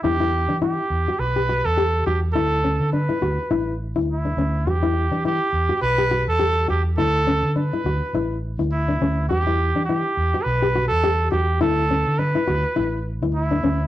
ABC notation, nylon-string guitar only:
X:1
M:4/4
L:1/16
Q:"Swing 16ths" 1/4=104
K:Edor
V:1 name="Nylon-string guitar"
E E2 D E2 z F2 G F2 G2 F2 | E2 C2 D E F2 E2 z E2 D C2 | F E2 D E2 z F2 G F2 G2 F2 | E2 C2 D E F2 E2 z E2 D C2 |
F E2 D E2 z F2 G F2 G2 F2 | E2 C2 z E F2 E2 z E2 D C2 |]